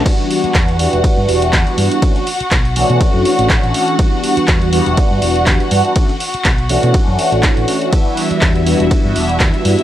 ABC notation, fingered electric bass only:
X:1
M:4/4
L:1/16
Q:"Swing 16ths" 1/4=122
K:Edor
V:1 name="Fingered electric bass" clef=bass
z4 E,,2 z E,,, z G,, E,,,2 E,, z G,, z | z4 B,,,2 z B,, z F,, z A,,, z A,,, z2 | z4 E,,2 z E,,, z G,, E,,,2 E,, z G,, z | z4 B,,,2 z B,, z F,, z A,,, z A,,, z2 |
z4 E,,2 z E,,, z G,, E,,,2 E,, z G,, z |]